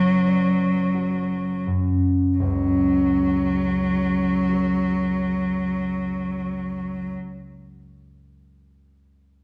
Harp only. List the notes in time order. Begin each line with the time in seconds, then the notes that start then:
Already playing: F#1 F#4 B4
0.27 D5
0.95 F#4
1.67 F#2
2.40 F#1 C#2
4.49 F#4 A#4
4.54 C#5